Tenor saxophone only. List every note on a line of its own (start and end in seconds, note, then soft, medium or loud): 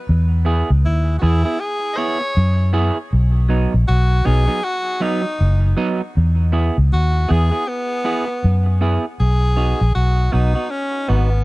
0.85 1.15 E4 medium
1.19 1.62 E4 medium
1.19 1.24 F#4 medium
1.60 1.95 G#4 loud
1.93 2.73 C#5 loud
1.93 1.98 D#5 medium
3.88 4.27 F#4 loud
4.26 4.66 G#4 loud
4.64 5.04 F#4 loud
5.02 5.78 D#4 loud
6.93 7.33 F#4 loud
7.31 7.69 G#4 loud
7.68 8.81 B3 loud
9.20 9.91 G#4 loud
9.95 10.34 F#4 loud
10.33 10.72 D#4 medium
10.71 11.11 C#4 loud
11.09 11.44 B3 medium